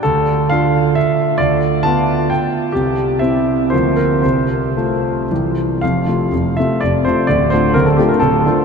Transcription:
X:1
M:3/4
L:1/16
Q:1/4=127
K:F
V:1 name="Grand piano"
A4 f4 e4 | d4 a4 g4 | G4 e4 c2 B2 | c8 z4 |
f6 e2 d2 c2 | d2 c2 B A G B A4 |]
V:2 name="Grand piano" clef=bass
D,,4 [DF]8 | D,,4 [=B,F]8 | C,,4 [CE]4 [D,,F,B,F]4 | C,,4 [A,F]4 [C,,E,G,G]4 |
[F,,,F,,]2 [C,A,F]2 [F,,,F,,]2 [C,A,F]2 [F,,,F,,]2 [C,A,F]2 | [D,,,D,,]2 [D,A,F]2 [D,,,D,,]2 [D,A,F]2 [D,,,D,,]2 [D,A,F]2 |]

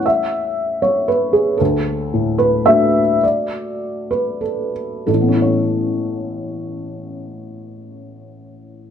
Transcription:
X:1
M:3/4
L:1/8
Q:1/4=98
K:A
V:1 name="Felt piano"
e3 c B G | A3 B e2 | d3 B A z | [A,,,A,,B,CEAc]6- |
[A,,,A,,B,CEAc]6 |]
V:2 name="Felt piano"
[A,CE]6 | D,,2 A,,2 [A,DF]2- | [A,DF]6 | z6 |
z6 |]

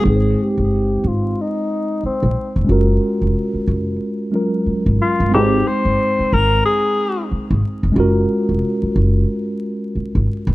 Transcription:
X:1
M:4/4
L:1/16
Q:"Swing 16ths" 1/4=91
K:Ab
V:1 name="Tenor saxophone"
A2 G4 F2 E4 C3 z | z12 z2 F2 | G2 c4 B2 A4 z4 | z16 |]
V:2 name="Tine electric piano"
[A,CE_c=cg]16 | [A,DF_GB]8- [A,DFGB]2 [_G,A,DFB]6 | [A,CE_c=cg]16 | [A,DF_GB]16 |]
V:3 name="Upright bass" clef=bass
A,,,2 z G,,,3 A,,,2 z4 z B,,, z F,,, | _G,,,2 z F,,, z2 G,,,2 z4 z A,,, z =G,,, | A,,,2 z G,,, z2 A,,,2 z4 z A,,, z F,,, | _G,,,2 z F,,, z2 G,,,2 z4 z A,,, z =G,,, |]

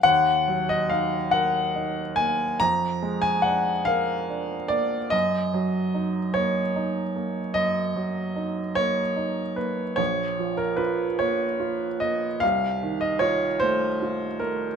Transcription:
X:1
M:12/8
L:1/16
Q:3/8=49
K:Ebm
V:1 name="Upright piano"
g3 e f2 g4 a2 b3 a g2 f4 =d2 | e6 d6 e6 d4 c2 | d3 B c2 d4 e2 f3 e d2 =c4 B2 |]
V:2 name="Upright piano"
E,,2 G,2 E2 B2 E2 B,2 F,,2 A,2 =D2 B2 D2 B,2 | G,,2 G,2 E2 B,2 E2 B,2 G,,2 G,2 E2 B,2 E2 B,2 | B,,,2 F,2 F2 B,2 F2 B,2 =C,,2 E,2 F2 =A,2 F2 A,2 |]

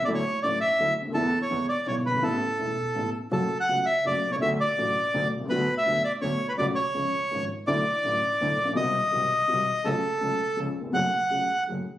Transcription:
X:1
M:3/4
L:1/16
Q:1/4=165
K:A
V:1 name="Bandoneon"
d c3 d2 e4 z2 | A3 c3 d2 c2 B2 | A8- A2 z2 | [K:F#m] A3 f3 e2 d3 c |
e2 d8 z2 | B3 e3 d2 c3 B | d2 c8 z2 | d12 |
^d12 | A8 z4 | f8 z4 |]
V:2 name="Upright piano" clef=bass
[D,,D,F,A,E]2 z2 [A,,,A,,D,F,A,E]2 z2 [D,,D,F,A,E]2 z/2 C,,/2 D,,/2 ^D,,/2 | [E,,D,E,A,B,E]2 z2 [E,,D,E,G,B,E]2 z2 [B,,,B,,D,G,B,E]2 z/2 F,,,/2 =G,,,/2 ^G,,,/2 | [A,,,A,,C,A,B,E]2 z2 [E,,,E,,C,A,B,E]2 z2 [A,,,A,,C,A,B,E]2 z2 | [K:F#m] [F,,C,F,A,F]2 z2 [C,,C,F,A,F]2 z2 [F,,C,F,A,F]2 z/2 B,,,/2 ^B,,,/2 C,,/2 |
[D,,D,F,A,F]2 z2 [A,,,A,,D,F,A,F]2 z2 [D,,D,F,A,F]2 z/2 B,,,/2 ^B,,,/2 C,,/2 | [D,,D,F,B,F]2 z2 [D,,D,F,B,F]2 z2 [D,,D,F,B,F]2 z2 | [C,,C,F,A,F]2 z2 [C,,C,^E,G,^E]2 z2 [G,,,G,,C,E,G,E]2 z2 | [D,,D,F,A,E]2 z2 [A,,,A,,D,F,A,E]2 z2 [D,,D,F,A,E]2 z/2 A,,,/2 ^A,,,/2 B,,,/2 |
[^B,,,^B,,^D,G,^B,F]2 z2 [B,,,B,,D,G,B,F]2 z2 [B,,,B,,D,G,B,F]2 z2 | [C,,C,F,A,CA]2 z2 [C,,C,F,A,CA]2 z2 [C,,C,^E,G,CG]2 z/2 ^D,,/2 =E,,/2 ^E,,/2 | [F,,F,A,CG]2 z2 [C,,C,F,A,CG]2 z2 [F,,F,A,CG]2 z2 |]
V:3 name="Double bass" clef=bass
D,,2 z2 A,,,2 z2 D,,2 D,,2 | E,,2 z2 E,,2 z2 B,,,2 =G,,,2 | A,,,2 z2 E,,,2 z2 A,,,2 z2 | [K:F#m] F,,,2 z2 C,,2 z2 F,,,2 ^B,,,2 |
D,,2 z2 A,,,2 z2 D,,2 ^B,,,2 | D,,2 z2 D,,2 z2 D,,2 z2 | C,,2 z2 C,,2 z2 G,,,2 z2 | D,,2 z2 A,,,2 z2 D,,2 ^A,,,2 |
^B,,,2 z2 B,,,2 z2 B,,,2 z2 | C,,2 z2 C,,2 z2 C,,2 z2 | F,,,2 z2 C,,2 z2 F,,,2 z2 |]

